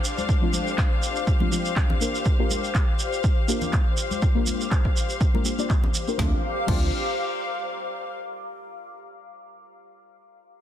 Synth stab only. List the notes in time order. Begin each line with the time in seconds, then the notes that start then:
0.41 F3 A3 C4 D4 F4
1.40 F3 A3 C4 D4 F4
1.51 F3 A3 C4 D4 F4
2.00 A#3 D4 F4 G4 A#4
2.39 A#3 D4 F4 G4 A#4
3.48 A#3 D4 F4 G4 A#4
4.35 A#3 D4 F4 G4 A#4
5.34 A#3 D4 F4 G4 A#4
5.45 A#3 D4 F4 G4 A4
5.58 A#3 D4 F4 G4 D5
6.07 A#3 D4 F4 G4 A#4
6.17 F3 A3 C4 D4 F4
6.67 F3 A3 C4 D4 F4